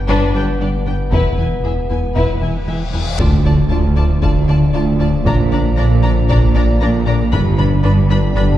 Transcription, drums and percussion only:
0.09 taiko
1.13 taiko
2.16 taiko
3.19 taiko
4.23 taiko
5.26 taiko
6.30 taiko
7.33 taiko
8.37 taiko

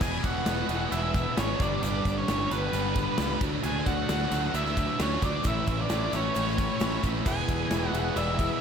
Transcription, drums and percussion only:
0.01 kick, crash, shaker
0.24 kick, ride, shaker
0.46 snare, ride, shaker
0.69 ride, shaker
0.92 ride, shaker
1.14 kick, ride, shaker
1.38 snare, ride, shaker
1.60 kick, ride, shaker
1.83 ride, shaker
2.05 kick, ride, shaker
2.28 snare, ride, shaker
2.51 ride, shaker
2.73 ride, shaker
2.96 kick, ride, shaker
3.18 snare, ride, shaker
3.41 kick, ride, shaker
3.64 ride, shaker
3.86 kick, ride, shaker
4.09 snare, ride, shaker
4.32 ride, shaker
4.54 ride, shaker
4.66 snare
4.77 kick, ride, shaker
5.00 snare, ride, shaker
5.22 kick, ride, shaker
5.44 kick, ride, shaker
5.67 kick, ride, shaker
5.89 snare, ride, shaker
6.13 ride, shaker
6.35 ride, shaker
6.48 snare
6.58 kick, ride, shaker
6.80 snare, ride, shaker
7.03 kick, ride, shaker
7.26 kick, crash, shaker
7.49 kick, ride, shaker
7.71 snare, ride, shaker
7.94 ride, shaker
8.16 ride, shaker
8.39 kick, ride, shaker

